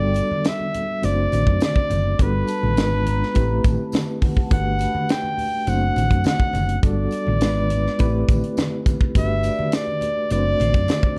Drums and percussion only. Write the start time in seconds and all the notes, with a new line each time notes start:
0.14 closed hi-hat, tambourine, muted conga
0.31 high conga
0.44 snare, closed hi-hat, tambourine, muted conga
0.60 high conga
0.74 closed hi-hat, muted conga, low conga
1.03 closed hi-hat, tambourine, muted conga
1.32 closed hi-hat, tambourine, high conga
1.47 kick
1.60 snare, closed hi-hat, tambourine, high conga
1.76 kick
1.90 closed hi-hat, tambourine, muted conga, high conga, low conga
2.19 kick, closed hi-hat, muted conga, low conga
2.47 closed hi-hat, tambourine
2.63 high conga
2.77 snare, closed hi-hat, tambourine
2.92 high conga
3.06 closed hi-hat, muted conga, low conga
3.23 snare
3.35 kick, closed hi-hat, tambourine, muted conga
3.64 kick, closed hi-hat, tambourine, high conga
3.92 snare, closed hi-hat, tambourine, muted conga, high conga
4.22 kick, open hi-hat, tambourine, muted conga, high conga, low conga
4.37 kick
4.51 kick, closed hi-hat, tambourine, low conga
4.79 closed hi-hat, tambourine, muted conga
4.95 high conga
5.09 snare, closed hi-hat, tambourine
5.23 high conga
5.38 open hi-hat, low conga
5.67 closed hi-hat, tambourine, muted conga
5.96 closed hi-hat, tambourine, muted conga, high conga
6.11 kick, closed hi-hat
6.24 snare, closed hi-hat, tambourine, muted conga, high conga
6.40 kick
6.53 closed hi-hat, tambourine, muted conga, high conga, low conga
6.69 closed hi-hat
6.83 kick, closed hi-hat, tambourine, low conga
7.11 closed hi-hat, tambourine
7.27 high conga
7.41 snare, closed hi-hat, tambourine
7.55 high conga
7.70 closed hi-hat, tambourine, low conga
7.86 snare
7.99 kick, closed hi-hat, tambourine
8.28 kick, closed hi-hat, tambourine, high conga
8.43 closed hi-hat
8.57 snare, closed hi-hat, tambourine, high conga
8.86 kick, closed hi-hat, tambourine, high conga, low conga
9.01 kick
9.15 kick, closed hi-hat, tambourine, muted conga, low conga
9.43 closed hi-hat, tambourine, muted conga
9.59 high conga
9.72 snare, closed hi-hat, tambourine
9.87 high conga
10.01 closed hi-hat, muted conga, low conga
10.30 closed hi-hat, tambourine
10.60 closed hi-hat, tambourine, muted conga, high conga
10.74 kick, closed hi-hat
10.88 snare, closed hi-hat, tambourine, muted conga, high conga
11.03 kick